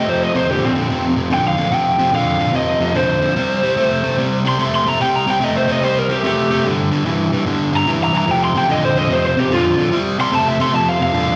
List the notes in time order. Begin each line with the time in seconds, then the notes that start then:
0.08 F2 C3 C5
0.23 D#5
0.35 F2 C3 C5
0.48 F2 D3 G4
0.65 C4
0.75 F2 D3
0.89 F2 C3
1.16 F2 C3
1.30 F2 D3 G5
1.48 F5
1.57 F2 D3
1.71 F2 C3 G5
1.99 F2 C3
2.12 F2 D3 F5
2.39 F2 D3
2.53 F2 C3 D#5
2.81 F2 C3
2.94 F2 D3 C5
3.21 F2 D3
3.36 C3 G3
3.63 C3 G3
3.77 C3 A3
4.03 C3 A3
4.18 C3 G3
4.45 C3 G3 C6
4.59 C3 A3
4.75 C6
4.86 C3 A3 A#5
5.00 C3 G3 G5
5.16 A#5
5.27 C3 G3 G5
5.41 C3 A3 D#5
5.58 C5
5.67 C3 A3
5.72 D#5
5.81 C3 G3 C5
5.99 A#4
6.09 C3 G3 G4
6.24 C3 A3 G4
6.50 C3 A3
6.65 G2 D3
6.91 G2 D3
7.05 G2 E3
7.32 G2 E3
7.46 G2 D3
7.72 G2 D3
7.76 A#5
7.87 G2 E3
8.04 A#5
8.13 G2 E3
8.18 A#5
8.27 F2 C3 G5
8.45 C6
8.55 F2 C3 G5
8.68 F2 D3 D#5
8.85 C5
8.96 F2 D3 D#5
9.09 F2 C3 C5
9.27 C5
9.37 F2 C3 G4
9.51 F2 D3 F4
9.78 F2 D3
9.92 C3 G3
10.19 C3 G3 C6
10.32 C3 A3 A5
10.48 E5
10.59 C3 A3 C6
10.73 F2 C3 A5
10.89 F5
10.99 F2 C3 F5
11.14 F2 D3